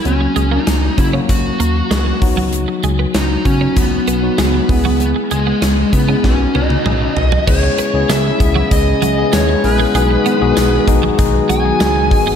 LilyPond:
<<
  \new Staff \with { instrumentName = "Lead electric guitar" } { \time 4/4 \key cis \dorian \tempo 4 = 97 cis'8. dis'8. e'8 fis'4. r8 | r4 dis'8 cis'8 b2 | b8 gis4 b8 cis'8 dis''4. | cis''4 e''4 dis''4 cis''8 b'8~ |
b'4. r4 gis''4. | }
  \new Staff \with { instrumentName = "Tine electric piano" } { \time 4/4 \key cis \dorian <fis ais cis' fis'>4~ <fis ais cis' fis'>16 r16 <fis ais cis' fis'>16 <fis ais cis' fis'>4. r16 <fis b dis' fis'>8~ | <fis b dis' fis'>4 r8 <fis b dis' fis'>4 r16 <fis b dis' fis'>8. <gis b e' gis'>8~ | <gis b e' gis'>4 r8 <gis b e' b'>16 <gis b e' gis'>16 <b cis' dis' fis'>4. r8 | <gis b cis' e' gis'>8 r16 <gis b cis' e' gis'>8 r16 <gis b cis' e' gis'>8 <gis b cis' e' gis'>8 r16 <gis b cis' e' gis'>8 r16 <gis b cis' e' gis'>8 |
<gis b dis' fis' gis'>8 r16 <gis b dis' fis' gis'>8 r16 <gis b dis' fis' gis'>8 <gis b dis' fis' gis'>8 r16 <gis b dis' fis' gis'>8 r16 <gis b dis' fis' gis'>8 | }
  \new Staff \with { instrumentName = "Analog synth pad" } { \clef bass \time 4/4 \key cis \dorian << { r1 | r1 | r1 | <cis e'>1 |
<dis fis fis'>1 | } \\ { r1 | r1 | r1 | <gis b>1~ |
<gis b>1 | } >> }
  \new Staff \with { instrumentName = "Clean electric guitar" } { \clef bass \time 4/4 \key cis \dorian r8 gis16 ais16 cis'16 r8 cis'16 r8 ais16 r16 gis16 r8 fis16 | r8 gis16 b16 cis'16 r8 cis'16 r8 b16 r16 gis16 r8 fis16 | r8 gis16 b16 cis'16 r8 cis'16 r8 b16 r16 gis16 r8 fis16 | cis'16 r16 b16 r16 gis16 r8 fis16 r8 fis16 r16 gis16 r8 gis16 |
gis16 r16 b16 r16 gis16 r8 fis16 r8 fis16 r16 gis16 r8 gis16 | }
  \new Staff \with { instrumentName = "Analog synth bass" } { \clef bass \time 4/4 \key cis \dorian cis,8 cis,8 cis,8 cis8 cis,8 dis,8 cis,8 cis,8~ | cis,8 cis,8 cis,8 cis8 cis,8 b,,8 cis,8 cis,8~ | cis,8 cis,8 cis,8 cis8 b,,8 cis,8 b,,8 b,,8 | cis,8 r16 cis,16 cis,8 cis,8 cis,8 cis,8 dis,8 ais,,8 |
b,,8 r16 b,,16 b,,8 b,,8 b,,8 b,,8 cis,8 gis,,8 | }
  \new DrumStaff \with { instrumentName = "Drums" } \drummode { \time 4/4 hh8 hh8 <hh sn>8 <hh bd>8 <hh bd>8 hh8 <hh sn>8 <hho bd>8 | hh8 hh8 <hh sn>8 <hh bd>8 <hh bd>8 hh8 <hh sn>8 <hho bd>8 | hh8 hh8 <hh sn>8 <hh bd>8 <bd sn>8 tommh16 tommh16 toml8 tomfh16 tomfh16 | <cymc bd>8 hh8 <hh sn tamb>8 <hh bd>8 <hh bd>8 hh8 <hh sn tamb>8 hho8 |
hh8 hh8 <hh sn tamb>8 <hh bd>8 <hh bd>8 hh8 <hh sn tamb>8 <hho bd>8 | }
>>